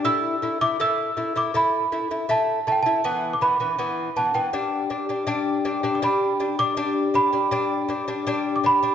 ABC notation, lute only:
X:1
M:4/4
L:1/16
Q:1/4=80
K:none
V:1 name="Lute"
[A,E]2 [A,E] [A,E] [A,E]2 [A,E] [A,E] [A,E]2 [A,E] [A,E] [A,E]2 [A,E] [A,E] | [E,B,]2 [E,B,] [E,B,] [E,B,]2 [E,B,] [E,B,] [G,D]2 [G,D] [G,D] [G,D]2 [G,D] [G,D] | [G,D]2 [G,D] [G,D] [G,D]2 [G,D] [G,D] [G,D]2 [G,D] [G,D] [G,D]2 [G,D] [G,D] |]